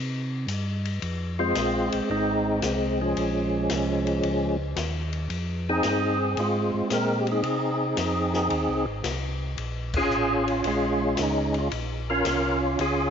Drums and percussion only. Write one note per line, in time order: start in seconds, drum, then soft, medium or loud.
0.48 hi-hat pedal medium
0.48 ride medium
0.85 ride soft
1.02 ride medium
1.55 snare medium
1.55 hi-hat pedal soft
1.55 ride medium
1.92 ride medium
2.62 snare medium
2.62 hi-hat pedal medium
2.62 ride medium
3.17 ride medium
3.69 snare medium
3.69 hi-hat pedal medium
3.69 ride medium
4.07 ride soft
4.23 ride medium
4.76 snare medium
4.76 hi-hat pedal medium
4.76 ride medium
5.13 ride soft
5.30 ride medium
5.83 snare medium
5.83 hi-hat pedal medium
5.83 ride medium
6.37 ride medium
6.90 snare medium
6.90 hi-hat pedal medium
6.90 ride medium
7.27 ride soft
7.43 ride medium
7.97 snare medium
7.97 hi-hat pedal medium
7.97 ride medium
8.34 snare medium
8.50 ride medium
9.04 snare medium
9.04 hi-hat pedal medium
9.04 ride medium
9.58 ride medium
9.94 kick medium
9.94 crash medium
10.11 hi-hat pedal soft
10.48 ride soft
10.64 ride medium
11.17 snare medium
11.17 hi-hat pedal medium
11.17 ride medium
11.54 ride soft
11.72 ride medium
12.25 snare medium
12.25 hi-hat pedal medium
12.25 ride medium
12.79 ride medium